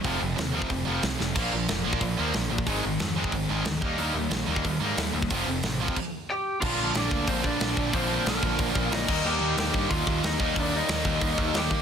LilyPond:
<<
  \new Staff \with { instrumentName = "Lead electric guitar" } { \time 4/4 \key bes \mixolydian \tempo 4 = 183 r1 | r1 | r1 | r1 |
r2. <g' g''>4 | <f' f''>4 <d' d''>4 <c' c''>8 <d' d''>4. | <c' c''>4 <bes bes'>2 <ees' ees''>4 | <g' g''>4 <g' g''>4 <f' f''>4 <ees' ees''>4 |
<d' d''>8 <ees' ees''>2~ <ees' ees''>8 <g' g''>4 | }
  \new Staff \with { instrumentName = "Distorted electric guitar" } { \clef bass \time 4/4 \key bes \mixolydian <f, c f a c'>2.~ <f, c f a c'>8 <f, c f a c'>8 | <bes, f bes d'>2.~ <bes, f bes d'>8 <bes, f bes d'>8 | <aes, ees aes c' ees'>2.~ <aes, ees aes c' ees'>8 <ees g bes ees'>8~ | <ees g bes ees'>2. <ees g bes ees'>8 r8 |
<f, c f a c'>2 r2 | <bes, d f bes d'>8 <bes, d f bes d'>8 <bes, d f bes d'>8 <bes, d f bes d'>8 <bes, d f bes d'>8 <bes, d f bes d'>8 <bes, d f bes d'>8 <bes, d f bes d'>8 | <bes, d f bes d'>8 <bes, d f bes d'>8 <bes, d f bes d'>8 <bes, d f bes d'>8 <bes, d f bes d'>8 <bes, d f bes d'>8 <bes, d f bes d'>8 <ees g bes ees'>8 | <ees g bes ees'>8 <ees g bes ees'>8 <ees g bes ees'>8 <ees g bes ees'>8 <ees g bes ees'>8 <ees g bes ees'>8 <ees g bes ees'>8 <ees g bes ees'>8 |
<ees g bes ees'>8 <ees g bes ees'>8 <ees g bes ees'>8 <ees g bes ees'>8 <ees g bes ees'>8 <ees g bes ees'>8 <ees g bes ees'>8 <ees g bes ees'>8 | }
  \new Staff \with { instrumentName = "Distorted electric guitar" } { \clef bass \time 4/4 \key bes \mixolydian <f, c f>8 <f, c>8 <f, c>8 <f, c f>8 <f, c>8 <f, c f>8 <f, c>8 <f, c>8 | <bes, f bes>8 <bes, f>8 <bes, f>8 <bes, f bes>8 <bes, f>8 <bes, f bes>8 <bes, f>8 <bes, f>8 | <aes, ees aes>8 <aes, ees>8 <aes, ees>8 <aes, ees aes>8 <aes, ees>8 <aes, ees aes>8 <aes, ees>8 <ees bes ees'>8 | <ees bes ees'>8 <ees bes>8 <ees bes>8 <ees bes ees'>8 <ees bes>8 <ees bes ees'>8 <ees bes>8 <ees bes>8 |
<f, c f>8 <f, c>8 <f, c>8 <f, c f>8 r2 | <bes, f bes>1 | <bes, f bes>2.~ <bes, f bes>8 <ees bes ees'>8~ | <ees bes ees'>2.~ <ees bes ees'>8 <ees bes ees'>8~ |
<ees bes ees'>2.~ <ees bes ees'>8 r8 | }
  \new Staff \with { instrumentName = "Distorted electric guitar" } { \clef bass \time 4/4 \key bes \mixolydian <f, c f>8 <f, c>8 <f, c>8 <f, c f>8 <f, c>8 <f, c f>8 <f, c>8 <f, c>8 | <bes, f bes>8 <bes, f>8 <bes, f>8 <bes, f bes>8 <bes, f>8 <bes, f bes>8 <bes, f>8 <bes, f>8 | <aes, ees aes>8 <aes, ees>8 <aes, ees>8 <aes, ees aes>8 <aes, ees>8 <aes, ees aes>8 <aes, ees>8 <ees g bes>8 | <ees g bes>8 <ees g>8 <ees g>8 <ees g bes>8 <ees g>8 <ees g bes>8 <ees g>8 <ees g>8 |
<f, c f>8 <f, c>8 <f, c>8 <f, c f>8 r2 | <bes, d f bes d'>1 | <bes, d f bes d'>2.~ <bes, d f bes d'>8 <ees g bes ees'>8~ | <ees g bes ees'>2.~ <ees g bes ees'>8 <ees g bes ees'>8~ |
<ees g bes ees'>2.~ <ees g bes ees'>8 r8 | }
  \new Staff \with { instrumentName = "Picked electric bass" } { \clef bass \time 4/4 \key bes \mixolydian f,,8 f,,8 ees,4 f,,8 f,,8 c,8 f,,8 | bes,,8 bes,,8 f,,8 bes,,8 bes,,8 ees,8 bes,,8 bes,,8 | aes,,8 aes,,8 f,4 aes,,8 aes,,8 d,8 ees,8 | ees,8 ees,8 bes,,8 ees,8 ees,8 aes,8 ees,8 ees,8 |
f,,8 f,,8 a,,4 r2 | bes,,8 bes,,8 bes,,8 d,8 bes,,8 bes,,8 bes,,8 bes,,8 | bes,,4 bes,,8 bes,,8 bes,,8 bes,,8 bes,,8 ees,8 | ees,8 ees,8 ees,8 g,8 ees,8 ees,8 ees,8 ees,8 |
ees,4 ees,8 ees,8 ees,8 ees,8 ees,8 ees8 | }
  \new DrumStaff \with { instrumentName = "Drums" } \drummode { \time 4/4 <hho bd>4 <hho sn>8. bd16 <hho bd>4 <hho sn>8 sn8 | <cymc hho bd>4 <hho sn>8. bd16 <hho bd>4 <hho sn>8. bd16 | <hho bd>4 <hho sn>8. bd16 <hho bd>4 <hho sn>8 bd8 | hho4 <hho sn>8. bd16 <hho bd>4 <hho sn>8. bd16 |
<hho bd>4 <hho sn>8. bd16 <cymc bd>4 r4 | <cymc bd>4 <hho sn>8 bd8 <hho bd>8 bd8 <hho sn>8 bd8 | <hho bd>4 <hho sn>8 bd8 <hho bd>8 bd8 <hho sn>8 <cymc bd>8 | r4 <hho sn>8 bd8 <hho bd>8 bd8 <hho sn>8 bd8 |
<hho bd>4 <hho sn>8 bd8 <hho bd>8 bd8 <hho sn>8 bd8 | }
>>